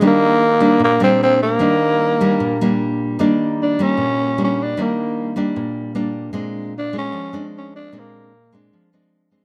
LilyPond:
<<
  \new Staff \with { instrumentName = "Tenor saxophone" } { \time 4/4 \key ees \major \tempo 4 = 152 bes2 bes8 c'8 c'8 bes8~ | bes2.~ bes8 r8 | r4 d'8 des'4. des'8 d'8 | bes4. r2 r8 |
r4 d'8 des'4. des'8 d'8 | bes4. r2 r8 | }
  \new Staff \with { instrumentName = "Nylon-string guitar" } { \time 4/4 \key ees \major << { <g bes d'>4 r8 <g bes d'>4 <g bes d'>4. | <g bes d'>4. <g bes d'>4 <g bes d'>4. | <g bes d'>4. <g bes>4. <g bes d'>4 | <g bes d'>4. <g bes d'>4. <g bes d'>4 |
<aes c' d'>4 r8 aes4 <aes c' d'>4. | <aes c' d'>4 r8 <aes c' d'>4 <aes c' d'>4 <aes c' d'>8 | } \\ { ees2 bes,2 | ees2 bes,2 | ees2 bes,2 | ees2 bes,2 |
bes,2 f2 | bes,2 f2 | } >> }
>>